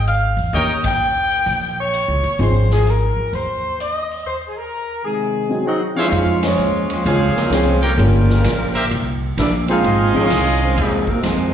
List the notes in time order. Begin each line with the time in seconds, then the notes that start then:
Already playing: G#1
0.07 F5, closed hi-hat
0.37 E2, open hi-hat
0.53 D#2 D#3 A#3 C#4 G4 A#4 C#5 D#5 G5, open hi-hat
0.84 G5, kick, ride
1.31 open hi-hat
1.46 A#1, open hi-hat
1.79 C#5
1.93 closed hi-hat
2.08 C#2
2.23 D#2, open hi-hat
2.39 G#1 F3 C4 D#4 G#4 C5, open hi-hat
2.70 G#4, snare
2.87 A#4, closed hi-hat
3.16 muted upright bass stroke
3.33 D#2 C5, open hi-hat
3.80 D#5, closed hi-hat
4.11 open hi-hat
4.27 C5
4.48 G#4
4.57 A#4
5.04 C3 D#3 G#3 G#4
5.49 F#3 C4 D#4 G#4
5.66 F#3 C4 D#4 F#4 G#4 D#5
5.95 F3 G#3 C4 C#4 D#4 F4 G#4 C5 C#5 F5
6.12 F2, ride
6.42 F3 G#3 C#4 F4 C5 C#5, snare, ride
6.58 D#2, hi-hat pedal
6.90 F3 G#3 C4 C#4 F4 C5, ride
7.05 C#2 C3 F3 G#3 C4 C#4 G#4 C5 C#5 F5, ride
7.30 G#4
7.36 F#3 A#3 C4 D#4 A#4, muted upright bass stroke, snare
7.50 C2 F3 G#3 C4 C#4 F4 G#4, snare, hi-hat pedal, ride
7.54 G#3 C#4 C5
7.82 C#3 F3 G3 A#3 C#4 F4 G4 A#4 C#5 G5, ride
7.98 G1 F3 G3 A#3 C#4 G4, ride
8.30 snare
8.44 A#1, snare, hi-hat pedal, ride
8.74 G4 A#4 C5 E5, ride
8.91 C2, ride
9.37 A#1 A#3 D4 E4 G4 D5, snare, hi-hat pedal, ride
9.68 G#3 C4 D#4 F4 G#4 C5 F5, ride
9.84 G#1 G#4 D#5 F5 C6, ride
10.13 D#3 F3 G#3 C4 C#4 D#4 F4 G#4 C#5, muted upright bass stroke
10.30 C2, snare, hi-hat pedal, ride
10.62 D#3 G#3 C4 D#4 F4 C5
10.76 D#2 C3 D#3 F3 G#3 C4 D#4 G#4, ride
11.07 F#3 A#3 C4 D#4 A#4, muted upright bass stroke, kick
11.23 F2 D#3 G#3 C4 D#4 F4 C5, snare, hi-hat pedal, ride